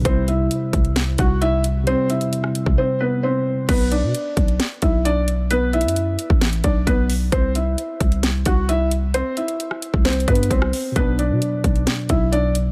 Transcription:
<<
  \new Staff \with { instrumentName = "Felt piano" } { \time 4/4 \key b \phrygian \tempo 4 = 132 <c' c''>8 <e' e''>4. r8 <fis' fis''>8 <e' e''>8 r8 | <c' c''>8 <e' e''>4. <c' c''>8 <b b'>8 <c' c''>4 | <b b'>8 <d' d''>4. r8 <e' e''>8 <d' d''>8 r8 | <b b'>8 <e' e''>4. r8 <d' d''>8 <b b'>8 r8 |
<c' c''>8 <e' e''>4. r8 <fis' fis''>8 <e' e''>8 r8 | <c' c''>8 <e' e''>4. <c' c''>8 <b b'>8 <c' c''>4 | <b b'>8 <d' d''>4. r8 <e' e''>8 <d' d''>8 r8 | }
  \new Staff \with { instrumentName = "Tine electric piano" } { \clef bass \time 4/4 \key b \phrygian <c g e'>1 | <c g c'>1 | r1 | r1 |
r1 | r1 | <b, fis d'>1 | }
  \new Staff \with { instrumentName = "808-style bass" } { \clef bass \time 4/4 \key b \phrygian c,4 r8 c,4 c,4.~ | c,16 r4. c,16 r2 | b,,8. b,16 r8 b,,8 r8 b,,4.~ | b,,8. fis,8. r16 a,,8. b,,8 b,,4 |
c,4 r8 c,4 c,4.~ | c,16 r4. c,8. g,8 c,8 r8 | b,,8. b,16 r8 b,,8 r8 b,,4. | }
  \new DrumStaff \with { instrumentName = "Drums" } \drummode { \time 4/4 <hh bd>8 hh8 hh8 <hh bd>16 hh16 <hh sn>8 <hh bd>8 hh8 hh8 | hh8 hh16 hh16 hh16 ss16 hh16 bd16 r4 r4 | <cymc hh bd>8 hh8 hh8 <hh bd>16 hh16 <hh sn>8 <hh bd>8 hh8 hh8 | \tuplet 3/2 { hh16 r16 r16 hh16 hh16 hh16 } hh8 hh16 bd16 <hh sn>16 hh16 <hh bd>8 <hh bd>8 hho8 |
<hh bd>8 hh8 hh8 <hh bd>16 hh16 <hh sn>8 <hh bd>8 hh8 hh8 | hh8 hh16 hh16 hh16 ss16 hh16 bd16 \tuplet 3/2 { <hh sn>16 hh16 hh16 <hh bd>16 hh16 hh16 } <hh bd>16 ss16 hho8 | <hh bd>8 hh8 hh8 <hh bd>16 hh16 <hh sn>8 <hh bd>8 hh8 hh8 | }
>>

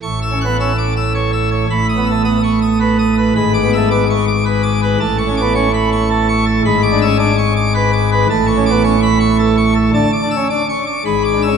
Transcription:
<<
  \new Staff \with { instrumentName = "Pipe organ" } { \time 3/4 \key a \major \tempo 4 = 109 \tuplet 3/2 { cis'''8 e'''8 fis'''8 e'''8 d'''8 e'''8 cis''8 e'''8 cis''8 } | \tuplet 3/2 { b''8 dis'''8 e'''8 dis'''8 cis'''8 dis'''8 b'8 dis'''8 b'8 } | \tuplet 3/2 { b''8 d'''8 e'''8 d'''8 cis'''8 d'''8 b'8 d'''8 b'8 } | \tuplet 3/2 { a''8 cis'''8 d'''8 cis'''8 b''8 cis'''8 a'8 cis'''8 a'8 } |
\tuplet 3/2 { b''8 d'''8 e'''8 d'''8 cis'''8 d'''8 b'8 d'''8 b'8 } | \tuplet 3/2 { a''8 cis'''8 d'''8 cis'''8 b''8 cis'''8 a'8 cis'''8 a'8 } | \tuplet 3/2 { a''8 d'''8 e'''8 d'''8 cis'''8 d'''8 b''8 d'''8 e'''8 } | }
  \new Staff \with { instrumentName = "Pipe organ" } { \time 3/4 \key a \major << { a,8 cis'16 b16 cis'16 r4. r16 | a,8 b16 a16 b16 r4. r16 | gis,8 b16 a16 b16 r4. r16 | a,8 cis'16 b16 cis'16 r4. r16 |
gis,8 d'16 cis'16 d'16 r4. r16 | a,8 cis'16 b16 cis'16 r4. r16 | d16 r16 d'16 cis'16 d'16 r8. gis,8 d'16 cis'16 | } \\ { a,,2. | a,,2. | gis,,2. | a,,2. |
gis,,2. | a,,2. | d,16 r4. r16 gis,,4 | } >> }
>>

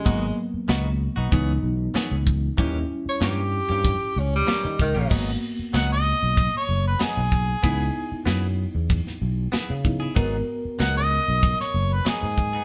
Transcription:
<<
  \new Staff \with { instrumentName = "Harmonica" } { \time 4/4 \key gis \minor \tempo 4 = 95 r1 | r1 | r4 fis''16 dis''4 cis''8 b'16 gis'4~ | gis'4 r2. |
r4 fis''16 dis''4 cis''8 b'16 gis'4 | }
  \new Staff \with { instrumentName = "Clean electric guitar" } { \time 4/4 \key gis \minor <dis b dis' fis'>16 r8. <dis b dis' fis'>16 r8 <b dis' fis'>16 <e b cis' gis'>16 r8. <e b cis' gis'>16 r8. | <e ais cis' g'>16 r8. <e ais cis' g'>16 r8 <ais cis' g'>16 r4 <e ais cis' g'>16 r8 <ais cis' g'>16 | <fis b dis' gis'>16 r8. <fis b dis' gis'>16 r4. r16 <fis b dis' gis'>16 r8. | <b e' gis'>16 r8. <b e' gis'>16 r4. r16 <b e' gis'>16 r8 <e' gis'>16 |
<fis b dis' gis'>16 r8. <fis b dis' gis'>16 r4. r16 <fis b dis' gis'>16 r8 <b dis' gis'>16 | }
  \new Staff \with { instrumentName = "Reed electric piano" } { \time 4/4 \key gis \minor <fis ais b>2 <e b dis'>2 | <g cis' e'>1 | <ais b fis'>1 | <b dis' e'>2.~ <b dis' e'>8 <b dis' e'>8 |
<b fis' ais'>1 | }
  \new Staff \with { instrumentName = "Tenor saxophone" } { \time 4/4 \key gis \minor gis8 r2. r8 | r8. cis''16 g'4. cis'16 g8. dis8 | r1 | r1 |
r1 | }
  \new Staff \with { instrumentName = "Fretless electric bass" } { \clef bass \time 4/4 \key gis \minor gis,,8 r8 cis,8. b,,16 cis,8 b,,8 r16 cis,8. | dis,8 r8 g,8. g,8 r16 cis,8 r16 dis16 cis,16 ais,,16 | gis,,8 r8 cis,8. b,,8 r16 fis,,8 r16 b,,8. | cis,8 r8 fis,8. e,8 r16 b,,8 r16 cis8. |
gis,,8 r8 cis,8. b,,8 r16 fis,,8 r16 gis,8. | }
  \new DrumStaff \with { instrumentName = "Drums" } \drummode { \time 4/4 <hh bd>4 <hh sn>4 <hh bd>4 <hh sn>8 bd8 | <hh bd>4 <hh sn>4 <hh bd>4 <hh sn>8 bd8 | <cymc bd>4 <rb sn>4 <bd rb>4 <rb sn>8 bd8 | <bd rb>4 <rb sn>4 <bd rb>16 sn8. <rb sn>8 bd8 |
<bd rb>4 <rb sn>4 <bd rb>16 sn8. <rb sn>8 bd8 | }
>>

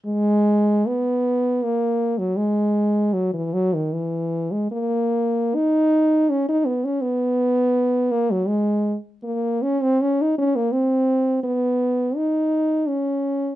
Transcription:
\new Staff \with { instrumentName = "French horn" } { \time 3/4 \key gis \minor \tempo 4 = 81 gis4 b4 ais8. fis16 | gis4 fis16 e16 fis16 dis16 e8. gis16 | ais4 dis'4 cis'16 dis'16 b16 cis'16 | b4. ais16 fis16 gis8. r16 |
ais8 cis'16 bis16 cis'16 dis'16 cis'16 ais16 bis4 | b4 dis'4 cis'4 | }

